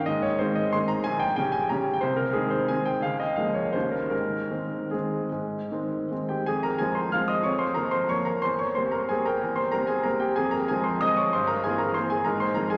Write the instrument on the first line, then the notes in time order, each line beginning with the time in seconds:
upright piano
0.06 G#2 D#5
0.22 C#5
0.39 D#3 G#3 C4 C5
0.55 D#5
0.73 D#3 G#3 C4 C6
0.88 A#5
1.04 A#1 G#5
1.19 G5
1.36 C#3 G3 C#4 G5
1.52 G#5
1.69 C#3 G3 C#4 A#5
1.93 G5
2.01 C2 C5
2.16 A#4
2.33 D#3 G#3 C4 G#4
2.50 C5
2.68 D#3 G#3 C4 G#5
2.85 G5
3.02 C#2 F5
3.20 D#5
3.36 F3 G#3 A#3 F5
3.54 C#5
3.73 D#2 D#3 G3 C#4 C5
3.92 A#4
4.10 G#2 A#4
4.51 D#3 G#3 C4
4.91 D#3 G#3 C4 G#4
5.32 G#2
5.71 D#3 G#3 C4
6.11 D#3 G#3 C4
6.29 G4 G5
6.46 F2 G#4 G#5
6.63 A#4 A#5
6.78 F3 G#3 C4 G#4 G#5
6.95 C5 C6
7.12 F3 G#3 C4 F5 F6
7.28 D#5 D#6
7.43 F2 C#5 C#6
7.59 C5 C6
7.74 F3 A#3 A#4 A#5
7.91 C5 C6
8.09 F3 A#3 C#5 C#6
8.25 A#4 A#5
8.42 E2 C5 C6
8.59 C#5 C#6
8.75 G3 A#3 C4 C5 C6
8.91 A#4 A#5
9.09 G3 A#3 C4 G#4 G#5
9.25 A#4 G5 A#5
9.43 E2
9.56 C5 C6
9.72 G3 A#3 C4 A#4 A#5
9.87 G#4 G#5
10.03 G3 A#3 C4 A#4 A#5
10.20 G4 G5
10.36 F2 G#4 G#5
10.51 A#4 A#5
10.68 F3 G#3 C4 G#4 G#5
10.84 C5 C6
11.01 F3 G#3 C4 D#5 D#6
11.17 C#5 C#6
11.33 G2 C5 C6
11.47 A#4 A#5
11.64 E3 A#3 C4 G#4 G#5
11.78 A#4 A#5
11.94 E3 A#3 C4 C5 C6
12.10 G#4 G#5
12.25 G#2 A#4 A#5
12.40 C5 C6
12.55 F3 G#3 C4 A#4 A#5
12.70 G#4 G#5